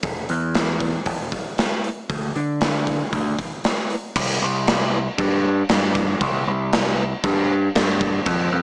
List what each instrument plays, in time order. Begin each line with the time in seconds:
0.03 picked electric bass E1, kick, open hi-hat
0.29 picked electric bass E2, open hi-hat
0.55 snare, open hi-hat
0.80 kick, open hi-hat
1.06 picked electric bass E1, kick, open hi-hat
1.32 kick, open hi-hat
1.58 snare, open hi-hat
1.84 open hi-hat
2.10 picked electric bass D2, kick, open hi-hat
2.36 picked electric bass D3, open hi-hat
2.61 snare, open hi-hat
2.87 kick, open hi-hat
3.13 picked electric bass D2, kick, open hi-hat
3.39 kick, open hi-hat
3.64 snare, open hi-hat
3.90 open hi-hat
4.16 picked electric bass C2, kick, crash
4.42 picked electric bass C2
4.67 snare, crash
5.18 picked electric bass G2, kick, crash
5.69 picked electric bass G2, snare, crash
5.95 kick, snare
6.21 picked electric bass C2, kick, crash
6.48 picked electric bass C2
6.73 snare, crash
7.24 picked electric bass G2, kick, crash
7.75 picked electric bass G2, snare, crash
8.01 kick
8.26 picked electric bass F2, kick, crash
8.52 picked electric bass F2